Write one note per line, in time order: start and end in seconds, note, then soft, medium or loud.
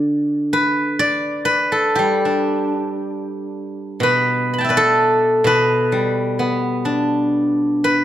0.00 1.02 D3 soft
0.00 0.97 D5 medium
0.53 1.45 B4 medium
0.99 2.84 D5 medium
1.45 3.49 B4 medium
1.72 3.91 A4 soft
1.95 4.98 G3 soft
1.95 4.31 G4 medium
2.25 4.26 D4 soft
4.00 5.43 B2 soft
4.00 4.70 B4 medium
4.53 5.88 B5 soft
4.58 6.16 G5 soft
4.58 6.03 A5 soft
4.64 6.36 E5 soft
4.69 5.46 B4 soft
4.69 6.53 D5 soft
4.77 6.96 A4 medium
5.44 8.04 B2 soft
5.44 7.51 B4 medium
5.92 7.80 G3 soft
6.39 8.04 B3 soft
6.85 8.04 D4 soft
7.84 8.04 B4 medium